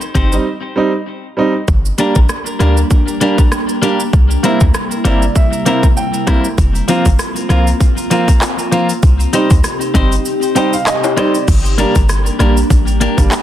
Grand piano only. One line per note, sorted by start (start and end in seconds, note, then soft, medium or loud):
0.14 0.22 C4 soft
0.14 0.23 D#4 medium
0.32 0.43 G3 medium
0.32 0.43 C4 medium
0.32 0.44 D#4 medium
0.76 0.90 G3 medium
0.76 0.90 C4 medium
0.76 0.91 D#4 loud
1.37 1.51 G3 medium
1.37 1.51 C4 medium
1.37 1.52 D#4 medium
1.98 2.12 G3 medium
1.98 2.13 A#3 medium
1.98 2.13 D4 loud
2.59 2.73 G3 medium
2.59 2.74 A#3 medium
2.59 2.74 D4 loud
3.20 3.35 G3 medium
3.20 3.35 A#3 medium
3.20 3.36 D4 loud
3.82 3.96 G3 medium
3.82 3.96 A#3 medium
3.82 3.97 D4 medium
4.43 4.57 A#3 medium
4.43 4.58 C4 medium
4.43 4.58 E4 loud
5.04 5.18 A#3 medium
5.04 5.19 C4 medium
5.04 5.19 E4 medium
5.04 5.34 D5 medium
5.36 5.93 E5 medium
5.65 5.80 A#3 medium
5.65 5.80 C4 medium
5.65 5.80 E4 loud
5.97 6.54 G5 medium
6.27 6.41 A#3 medium
6.27 6.41 C4 medium
6.27 6.42 E4 medium
6.88 7.02 A#3 medium
6.88 7.02 C4 medium
6.88 7.03 F4 loud
7.49 7.63 A#3 medium
7.49 7.64 C4 medium
7.49 7.64 F4 loud
8.10 8.24 A#3 medium
8.10 8.25 C4 medium
8.10 8.25 F4 loud
8.71 8.86 A#3 medium
8.71 8.86 C4 medium
8.71 8.87 F4 medium
9.33 9.47 G3 medium
9.33 9.47 C4 medium
9.33 9.48 D#4 loud
9.94 10.08 G3 medium
9.94 10.09 C4 medium
9.94 10.09 D#4 loud
10.55 10.69 G3 medium
10.55 10.70 C4 medium
10.55 10.70 D#4 loud
10.55 10.72 G5 medium
10.73 10.86 F5 medium
10.87 11.15 D#5 medium
11.16 11.31 G3 medium
11.16 11.31 C4 medium
11.16 11.31 D#4 medium
11.16 11.46 D5 medium
11.78 11.92 G3 medium
11.78 11.92 A#3 medium
11.78 11.93 D4 loud
12.39 12.53 G3 medium
12.39 12.53 A#3 medium
12.39 12.54 D4 loud
13.00 13.07 A#3 medium
13.00 13.08 D4 medium
13.17 13.28 G3 medium
13.17 13.29 A#3 medium
13.17 13.29 D4 medium